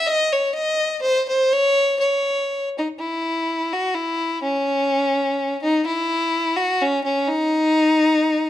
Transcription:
0, 0, Header, 1, 2, 480
1, 0, Start_track
1, 0, Tempo, 483481
1, 51, Time_signature, 3, 2, 24, 8
1, 6771, Tempo, 494234
1, 8400, End_track
2, 0, Start_track
2, 0, Title_t, "Fiddle"
2, 0, Program_c, 0, 110
2, 65, Note_on_c, 0, 75, 111
2, 321, Note_on_c, 0, 73, 87
2, 336, Note_off_c, 0, 75, 0
2, 535, Note_off_c, 0, 73, 0
2, 541, Note_on_c, 0, 75, 94
2, 980, Note_off_c, 0, 75, 0
2, 1016, Note_on_c, 0, 72, 95
2, 1237, Note_off_c, 0, 72, 0
2, 1282, Note_on_c, 0, 72, 86
2, 1521, Note_on_c, 0, 73, 105
2, 1536, Note_off_c, 0, 72, 0
2, 1974, Note_off_c, 0, 73, 0
2, 1980, Note_on_c, 0, 73, 78
2, 2672, Note_off_c, 0, 73, 0
2, 2763, Note_on_c, 0, 63, 74
2, 2857, Note_off_c, 0, 63, 0
2, 2972, Note_on_c, 0, 64, 80
2, 3705, Note_on_c, 0, 66, 82
2, 3720, Note_off_c, 0, 64, 0
2, 3921, Note_on_c, 0, 64, 81
2, 3936, Note_off_c, 0, 66, 0
2, 4388, Note_off_c, 0, 64, 0
2, 4397, Note_on_c, 0, 61, 88
2, 5546, Note_off_c, 0, 61, 0
2, 5587, Note_on_c, 0, 63, 82
2, 5801, Note_off_c, 0, 63, 0
2, 5820, Note_on_c, 0, 64, 91
2, 6521, Note_on_c, 0, 66, 90
2, 6536, Note_off_c, 0, 64, 0
2, 6770, Note_on_c, 0, 61, 90
2, 6784, Note_off_c, 0, 66, 0
2, 6981, Note_off_c, 0, 61, 0
2, 6987, Note_on_c, 0, 61, 84
2, 7214, Note_on_c, 0, 63, 105
2, 7229, Note_off_c, 0, 61, 0
2, 8400, Note_off_c, 0, 63, 0
2, 8400, End_track
0, 0, End_of_file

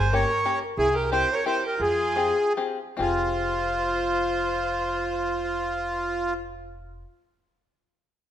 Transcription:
0, 0, Header, 1, 5, 480
1, 0, Start_track
1, 0, Key_signature, -4, "minor"
1, 0, Tempo, 330215
1, 1141, Time_signature, 3, 2, 24, 8
1, 2112, Tempo, 357569
1, 3072, Tempo, 397088
1, 3552, Tempo, 427655
1, 6432, Tempo, 436681
1, 9922, End_track
2, 0, Start_track
2, 0, Title_t, "Accordion"
2, 0, Program_c, 0, 21
2, 0, Note_on_c, 0, 72, 87
2, 197, Note_on_c, 0, 73, 101
2, 204, Note_off_c, 0, 72, 0
2, 861, Note_off_c, 0, 73, 0
2, 1138, Note_on_c, 0, 68, 107
2, 1379, Note_on_c, 0, 70, 74
2, 1387, Note_off_c, 0, 68, 0
2, 1601, Note_off_c, 0, 70, 0
2, 1625, Note_on_c, 0, 72, 110
2, 1929, Note_on_c, 0, 73, 97
2, 1959, Note_off_c, 0, 72, 0
2, 2109, Note_off_c, 0, 73, 0
2, 2128, Note_on_c, 0, 72, 97
2, 2363, Note_off_c, 0, 72, 0
2, 2397, Note_on_c, 0, 70, 71
2, 2591, Note_off_c, 0, 70, 0
2, 2592, Note_on_c, 0, 68, 97
2, 3508, Note_off_c, 0, 68, 0
2, 4052, Note_on_c, 0, 65, 90
2, 7755, Note_off_c, 0, 65, 0
2, 9922, End_track
3, 0, Start_track
3, 0, Title_t, "Violin"
3, 0, Program_c, 1, 40
3, 0, Note_on_c, 1, 68, 74
3, 165, Note_off_c, 1, 68, 0
3, 175, Note_on_c, 1, 70, 72
3, 850, Note_off_c, 1, 70, 0
3, 1137, Note_on_c, 1, 64, 76
3, 1356, Note_off_c, 1, 64, 0
3, 1364, Note_on_c, 1, 67, 64
3, 1581, Note_off_c, 1, 67, 0
3, 1590, Note_on_c, 1, 67, 77
3, 1908, Note_off_c, 1, 67, 0
3, 1940, Note_on_c, 1, 70, 76
3, 2097, Note_off_c, 1, 70, 0
3, 2116, Note_on_c, 1, 67, 60
3, 2326, Note_off_c, 1, 67, 0
3, 2334, Note_on_c, 1, 67, 67
3, 2557, Note_off_c, 1, 67, 0
3, 2565, Note_on_c, 1, 65, 73
3, 3496, Note_off_c, 1, 65, 0
3, 4050, Note_on_c, 1, 72, 65
3, 7754, Note_off_c, 1, 72, 0
3, 9922, End_track
4, 0, Start_track
4, 0, Title_t, "Five-string banjo"
4, 0, Program_c, 2, 105
4, 188, Note_on_c, 2, 61, 51
4, 193, Note_on_c, 2, 70, 70
4, 197, Note_on_c, 2, 58, 62
4, 200, Note_on_c, 2, 67, 56
4, 433, Note_off_c, 2, 61, 0
4, 433, Note_off_c, 2, 70, 0
4, 436, Note_off_c, 2, 58, 0
4, 439, Note_off_c, 2, 67, 0
4, 659, Note_on_c, 2, 61, 52
4, 661, Note_on_c, 2, 67, 48
4, 662, Note_on_c, 2, 58, 58
4, 665, Note_on_c, 2, 70, 66
4, 902, Note_off_c, 2, 61, 0
4, 905, Note_off_c, 2, 67, 0
4, 905, Note_off_c, 2, 70, 0
4, 906, Note_off_c, 2, 58, 0
4, 1626, Note_on_c, 2, 67, 58
4, 1635, Note_on_c, 2, 64, 67
4, 1636, Note_on_c, 2, 70, 71
4, 1640, Note_on_c, 2, 60, 58
4, 1871, Note_off_c, 2, 67, 0
4, 1874, Note_off_c, 2, 70, 0
4, 1876, Note_off_c, 2, 64, 0
4, 1878, Note_off_c, 2, 60, 0
4, 2117, Note_on_c, 2, 67, 54
4, 2119, Note_on_c, 2, 60, 53
4, 2126, Note_on_c, 2, 70, 65
4, 2128, Note_on_c, 2, 64, 58
4, 2351, Note_off_c, 2, 60, 0
4, 2352, Note_off_c, 2, 67, 0
4, 2354, Note_off_c, 2, 64, 0
4, 2355, Note_off_c, 2, 70, 0
4, 3062, Note_on_c, 2, 60, 62
4, 3072, Note_on_c, 2, 65, 45
4, 3076, Note_on_c, 2, 67, 51
4, 3080, Note_on_c, 2, 68, 70
4, 3306, Note_off_c, 2, 60, 0
4, 3307, Note_off_c, 2, 65, 0
4, 3312, Note_off_c, 2, 67, 0
4, 3313, Note_off_c, 2, 68, 0
4, 3557, Note_on_c, 2, 67, 53
4, 3562, Note_on_c, 2, 60, 64
4, 3564, Note_on_c, 2, 68, 57
4, 3569, Note_on_c, 2, 65, 51
4, 3794, Note_off_c, 2, 67, 0
4, 3797, Note_off_c, 2, 60, 0
4, 3797, Note_off_c, 2, 68, 0
4, 3800, Note_off_c, 2, 65, 0
4, 4003, Note_on_c, 2, 60, 61
4, 4011, Note_on_c, 2, 65, 58
4, 4026, Note_on_c, 2, 67, 63
4, 4045, Note_on_c, 2, 68, 80
4, 8500, Note_off_c, 2, 60, 0
4, 8504, Note_off_c, 2, 65, 0
4, 8511, Note_off_c, 2, 67, 0
4, 8521, Note_off_c, 2, 68, 0
4, 9922, End_track
5, 0, Start_track
5, 0, Title_t, "Upright bass"
5, 0, Program_c, 3, 32
5, 0, Note_on_c, 3, 31, 91
5, 335, Note_off_c, 3, 31, 0
5, 1126, Note_on_c, 3, 36, 80
5, 1762, Note_off_c, 3, 36, 0
5, 2574, Note_on_c, 3, 41, 67
5, 3224, Note_off_c, 3, 41, 0
5, 4030, Note_on_c, 3, 29, 67
5, 8513, Note_off_c, 3, 29, 0
5, 9922, End_track
0, 0, End_of_file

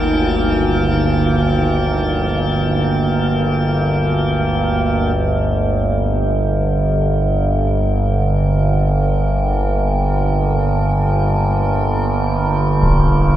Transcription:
0, 0, Header, 1, 5, 480
1, 0, Start_track
1, 0, Key_signature, -2, "minor"
1, 0, Tempo, 500000
1, 12831, End_track
2, 0, Start_track
2, 0, Title_t, "Ambient pad"
2, 0, Program_c, 0, 92
2, 0, Note_on_c, 0, 55, 73
2, 0, Note_on_c, 0, 63, 75
2, 0, Note_on_c, 0, 65, 69
2, 0, Note_on_c, 0, 70, 73
2, 4971, Note_off_c, 0, 55, 0
2, 4973, Note_off_c, 0, 63, 0
2, 4976, Note_off_c, 0, 65, 0
2, 4977, Note_off_c, 0, 70, 0
2, 12831, End_track
3, 0, Start_track
3, 0, Title_t, "Synth drone"
3, 0, Program_c, 1, 95
3, 0, Note_on_c, 1, 58, 72
3, 0, Note_on_c, 1, 70, 76
3, 4972, Note_off_c, 1, 70, 0
3, 4984, Note_off_c, 1, 58, 0
3, 4984, Note_on_c, 1, 70, 81
3, 4996, Note_on_c, 1, 58, 80
3, 12831, Note_off_c, 1, 58, 0
3, 12831, Note_off_c, 1, 70, 0
3, 12831, End_track
4, 0, Start_track
4, 0, Title_t, "Synth drone"
4, 0, Program_c, 2, 95
4, 0, Note_on_c, 2, 31, 71
4, 0, Note_on_c, 2, 38, 70
4, 4951, Note_off_c, 2, 31, 0
4, 4963, Note_on_c, 2, 31, 67
4, 5103, Note_off_c, 2, 38, 0
4, 12831, Note_off_c, 2, 31, 0
4, 12831, End_track
5, 0, Start_track
5, 0, Title_t, "Drums"
5, 12313, Note_on_c, 9, 35, 82
5, 12409, Note_off_c, 9, 35, 0
5, 12831, End_track
0, 0, End_of_file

